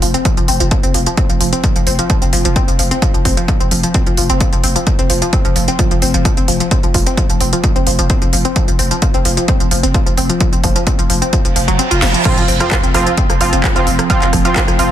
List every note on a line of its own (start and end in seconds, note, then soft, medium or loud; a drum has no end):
0.02 0.14 F1 loud
0.02 0.09 F3 medium
0.02 open hi-hat loud
0.14 0.18 C4 medium
0.14 closed hi-hat medium
0.25 0.29 F3 medium
0.25 kick loud
0.25 closed hi-hat medium
0.37 0.48 F1 medium
0.37 0.44 F3 medium
0.37 closed hi-hat medium
0.48 0.60 F1 loud
0.48 0.53 C4 medium
0.48 open hi-hat loud
0.60 0.71 F1 medium
0.60 0.64 F3 medium
0.60 closed hi-hat medium
0.71 0.78 F3 medium
0.71 kick loud
0.71 closed hi-hat medium
0.83 0.94 F1 medium
0.83 0.87 C4 medium
0.83 closed hi-hat medium
0.94 1.06 F1 loud
0.94 0.99 F3 medium
0.94 open hi-hat loud
1.06 1.13 F3 medium
1.06 closed hi-hat medium
1.17 1.22 C4 medium
1.17 kick loud
1.17 closed hi-hat medium
1.29 1.40 F1 medium
1.29 1.34 F3 medium
1.29 closed hi-hat medium
1.40 1.52 F1 loud
1.40 1.48 F3 medium
1.40 open hi-hat loud
1.53 1.57 C4 medium
1.53 closed hi-hat medium
1.64 1.68 F3 medium
1.64 kick loud
1.64 closed hi-hat medium
1.76 1.86 F1 medium
1.76 1.82 F3 medium
1.76 closed hi-hat medium
1.87 1.99 F1 loud
1.87 1.91 C4 medium
1.87 open hi-hat loud
1.99 2.03 F3 medium
1.99 closed hi-hat medium
2.10 2.17 F3 medium
2.10 kick loud
2.10 closed hi-hat medium
2.22 2.32 F1 medium
2.22 2.26 C4 medium
2.22 closed hi-hat medium
2.33 2.44 F1 loud
2.33 2.37 F3 medium
2.33 open hi-hat loud
2.45 2.56 F1 medium
2.45 2.52 F3 medium
2.45 closed hi-hat medium
2.56 2.60 C4 medium
2.56 kick loud
2.56 closed hi-hat medium
2.68 2.79 F1 medium
2.68 2.72 F3 medium
2.68 closed hi-hat medium
2.79 2.91 F1 loud
2.79 2.86 F3 medium
2.79 open hi-hat loud
2.91 2.95 C4 medium
2.91 closed hi-hat medium
3.02 3.06 F3 medium
3.02 kick loud
3.02 closed hi-hat medium
3.14 3.25 F1 medium
3.14 3.21 F3 medium
3.14 closed hi-hat medium
3.25 3.37 F1 loud
3.25 3.29 C4 medium
3.25 kick medium
3.25 open hi-hat loud
3.37 3.41 F3 medium
3.37 closed hi-hat medium
3.48 3.55 F3 medium
3.48 kick loud
3.48 closed hi-hat medium
3.60 3.71 F1 medium
3.60 3.64 C4 medium
3.60 closed hi-hat medium
3.71 3.83 F1 loud
3.71 3.76 F3 medium
3.71 open hi-hat loud
3.83 3.90 F3 medium
3.83 closed hi-hat medium
3.94 3.99 C4 medium
3.94 kick loud
3.94 closed hi-hat medium
4.06 4.17 F1 medium
4.06 4.11 F3 medium
4.06 closed hi-hat medium
4.17 4.29 F1 loud
4.17 4.25 F3 medium
4.17 open hi-hat loud
4.30 4.40 F1 medium
4.30 4.34 C4 medium
4.30 closed hi-hat medium
4.40 4.45 F3 medium
4.40 kick loud
4.40 closed hi-hat medium
4.53 4.63 F1 medium
4.53 4.59 F3 medium
4.53 closed hi-hat medium
4.64 4.76 F1 loud
4.64 4.68 C4 medium
4.64 open hi-hat loud
4.76 4.80 F3 medium
4.76 closed hi-hat medium
4.87 4.94 F3 medium
4.87 kick loud
4.87 closed hi-hat medium
4.99 5.09 F1 medium
4.99 5.03 C4 medium
4.99 closed hi-hat medium
5.10 5.22 F1 loud
5.10 5.14 F3 medium
5.10 open hi-hat loud
5.22 5.28 F3 medium
5.22 closed hi-hat medium
5.33 5.37 C4 medium
5.33 kick loud
5.33 closed hi-hat medium
5.45 5.55 F1 medium
5.45 5.49 F3 medium
5.45 closed hi-hat soft
5.56 5.68 F1 loud
5.56 5.63 F3 medium
5.56 open hi-hat loud
5.68 5.72 C4 medium
5.68 closed hi-hat medium
5.79 5.83 F3 medium
5.79 kick loud
5.79 closed hi-hat medium
5.91 6.01 F1 medium
5.91 5.98 F3 medium
5.91 closed hi-hat medium
6.02 6.13 F1 loud
6.02 6.06 C4 medium
6.02 open hi-hat loud
6.14 6.25 F1 medium
6.14 6.18 F3 medium
6.14 closed hi-hat soft
6.25 6.32 F3 medium
6.25 kick loud
6.25 closed hi-hat medium
6.37 6.47 F1 medium
6.37 6.41 C4 medium
6.37 closed hi-hat soft
6.48 6.60 F1 loud
6.48 6.53 F3 medium
6.48 open hi-hat loud
6.60 6.67 F3 medium
6.60 closed hi-hat medium
6.71 6.76 C4 medium
6.71 kick loud
6.71 closed hi-hat medium
6.83 6.94 F1 medium
6.83 6.87 F3 medium
6.83 closed hi-hat soft
6.94 7.06 F1 loud
6.94 7.02 F3 medium
6.94 kick medium
6.94 open hi-hat loud
7.06 7.10 C4 medium
7.06 closed hi-hat medium
7.17 7.22 F3 medium
7.17 kick loud
7.17 closed hi-hat medium
7.29 7.40 F1 medium
7.29 7.36 F3 medium
7.29 closed hi-hat soft
7.41 7.52 F1 loud
7.41 7.45 C4 medium
7.41 open hi-hat loud
7.53 7.57 F3 medium
7.53 closed hi-hat soft
7.64 7.71 F3 medium
7.64 kick loud
7.64 closed hi-hat medium
7.76 7.86 F1 medium
7.76 7.80 C4 medium
7.76 closed hi-hat medium
7.87 7.98 F1 loud
7.87 7.91 F3 medium
7.87 open hi-hat loud
7.99 8.10 F1 medium
7.99 8.05 F3 medium
7.99 closed hi-hat soft
8.10 8.14 C4 medium
8.10 kick loud
8.10 closed hi-hat medium
8.22 8.32 F1 medium
8.22 8.26 F3 medium
8.22 closed hi-hat soft
8.33 8.45 F1 loud
8.33 8.40 F3 medium
8.33 open hi-hat loud
8.45 8.49 C4 medium
8.45 closed hi-hat medium
8.56 8.60 F3 medium
8.56 kick loud
8.56 closed hi-hat medium
8.68 8.79 F1 medium
8.68 8.74 F3 medium
8.68 closed hi-hat medium
8.79 8.91 F1 loud
8.79 8.83 C4 medium
8.79 open hi-hat loud
8.91 8.95 F3 medium
8.91 closed hi-hat medium
9.02 9.09 F3 medium
9.02 kick loud
9.02 closed hi-hat medium
9.14 9.25 F1 medium
9.14 9.18 C4 medium
9.14 closed hi-hat soft
9.25 9.37 F1 loud
9.25 9.29 F3 medium
9.25 open hi-hat loud
9.37 9.44 F3 medium
9.37 closed hi-hat medium
9.48 9.53 C4 medium
9.48 kick loud
9.48 closed hi-hat medium
9.60 9.71 F1 medium
9.60 9.64 F3 medium
9.60 closed hi-hat medium
9.71 9.83 F1 loud
9.71 9.78 F3 medium
9.71 open hi-hat loud
9.83 9.94 F1 medium
9.83 9.87 C4 medium
9.83 closed hi-hat medium
9.94 9.99 F3 medium
9.94 kick loud
9.94 closed hi-hat medium
10.06 10.17 F1 medium
10.06 10.13 F3 medium
10.06 closed hi-hat medium
10.17 10.29 F1 loud
10.17 10.22 C4 medium
10.17 open hi-hat loud
10.29 10.33 F3 medium
10.29 closed hi-hat medium
10.40 10.48 F3 medium
10.40 kick loud
10.40 closed hi-hat medium
10.53 10.63 F1 medium
10.53 10.57 C4 medium
10.53 closed hi-hat medium
10.64 10.76 F1 loud
10.64 10.68 F3 medium
10.64 kick medium
10.64 open hi-hat loud
10.76 10.82 F3 medium
10.76 closed hi-hat medium
10.87 10.91 C4 medium
10.87 kick loud
10.87 closed hi-hat medium
10.99 11.09 F1 medium
10.99 11.03 F3 medium
10.99 closed hi-hat medium
11.10 11.22 F1 loud
11.10 11.17 F3 medium
11.10 open hi-hat loud
11.22 11.26 C4 medium
11.22 closed hi-hat medium
11.33 11.37 F3 medium
11.33 kick loud
11.33 closed hi-hat medium
11.33 reverse cymbal medium
11.45 11.55 F1 medium
11.45 11.51 F3 medium
11.45 closed hi-hat medium
11.56 11.68 F1 loud
11.56 11.67 F3 medium
11.56 open hi-hat loud
11.68 11.79 F1 medium
11.68 11.78 F#3 loud
11.68 closed hi-hat medium
11.79 11.90 C4 medium
11.79 closed hi-hat medium
11.91 12.02 F1 medium
11.91 12.01 F4 loud
11.91 closed hi-hat soft
12.02 12.14 F1 loud
12.02 12.09 F3 medium
12.02 snare medium
12.02 open hi-hat loud
12.14 12.21 F3 medium
12.14 closed hi-hat medium
12.25 12.29 F3 medium
12.25 12.42 F3 loud
12.25 14.91 F3 medium
12.25 12.42 C4 medium
12.25 14.91 C4 medium
12.25 12.42 F4 loud
12.25 kick loud
12.25 cross-stick medium
12.25 closed hi-hat medium
12.25 crash loud
12.25 sub drop medium
12.37 12.48 F1 medium
12.37 12.44 F3 medium
12.37 closed hi-hat medium
12.48 12.60 F1 loud
12.48 12.53 C4 medium
12.48 open hi-hat loud
12.60 12.64 F3 medium
12.60 12.77 F3 medium
12.60 12.77 C4 medium
12.60 12.77 F4 loud
12.60 cross-stick medium
12.60 closed hi-hat medium
12.71 12.78 F3 medium
12.71 kick loud
12.71 clap loud
12.71 closed hi-hat medium
12.83 12.94 F1 medium
12.83 12.87 C4 medium
12.83 closed hi-hat medium
12.94 13.06 F1 loud
12.94 12.99 F3 medium
12.94 13.11 F3 medium
12.94 13.11 C4 medium
12.94 13.11 F4 loud
12.94 cross-stick medium
12.94 open hi-hat loud
13.07 13.13 F3 medium
13.07 closed hi-hat medium
13.17 13.22 C4 medium
13.17 kick loud
13.17 closed hi-hat medium
13.30 13.40 F1 medium
13.30 13.34 F3 medium
13.30 cross-stick medium
13.30 closed hi-hat medium
13.41 13.52 F1 loud
13.41 13.48 F3 medium
13.41 13.58 F3 medium
13.41 13.58 C4 medium
13.41 13.58 F4 medium
13.41 open hi-hat loud
13.53 13.63 F1 medium
13.53 13.57 C4 medium
13.53 closed hi-hat medium
13.64 13.68 F3 medium
13.64 kick loud
13.64 cross-stick medium
13.64 clap loud
13.64 closed hi-hat medium
13.76 13.86 F1 medium
13.76 13.82 F3 medium
13.76 13.86 F3 medium
13.76 13.86 C4 medium
13.76 13.86 F4 loud
13.76 closed hi-hat medium
13.87 13.99 F1 loud
13.87 13.91 C4 medium
13.87 open hi-hat loud
13.99 14.03 F3 medium
13.99 cross-stick medium
13.99 closed hi-hat medium
14.10 14.17 F3 medium
14.10 14.27 F3 loud
14.10 14.27 C4 medium
14.10 14.27 F4 loud
14.10 kick loud
14.10 closed hi-hat medium
14.22 14.32 F1 medium
14.22 14.26 C4 medium
14.22 clap soft
14.22 closed hi-hat medium
14.33 14.45 F1 loud
14.33 14.37 F3 medium
14.33 kick medium
14.33 cross-stick medium
14.33 open hi-hat loud
14.45 14.51 F3 medium
14.45 14.61 F3 medium
14.45 14.61 C4 medium
14.45 14.61 F4 loud
14.45 closed hi-hat medium
14.56 14.60 C4 medium
14.56 kick loud
14.56 clap loud
14.56 closed hi-hat medium
14.68 14.78 F1 medium
14.68 14.72 F3 medium
14.68 cross-stick medium
14.68 closed hi-hat medium
14.79 14.91 F1 loud
14.79 14.86 F3 medium
14.79 14.91 F3 medium
14.79 14.91 C4 medium
14.79 14.91 F4 loud
14.79 open hi-hat loud